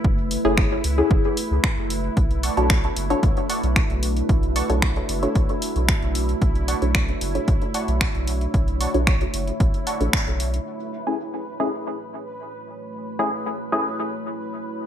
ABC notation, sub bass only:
X:1
M:4/4
L:1/16
Q:1/4=113
K:F#m
V:1 name="Sub bass" clef=bass
F,,,2 z F,,,2 z C,, z F,,, z2 C,, z F,,,2 z | B,,,2 z B,,,2 z F,,, z B,,, z2 B,,, z B,,,2 z | B,,,2 z B,,,2 z F,,, z B,,, z2 B,,, z B,,,2 z | B,,,2 z B,,,2 z F,,, z B,,, z2 B,,, z B,,,2 z |
B,,,2 z B,,,2 z F,,, z B,,, z2 A,,, z B,,,2 z | z16 | z16 |]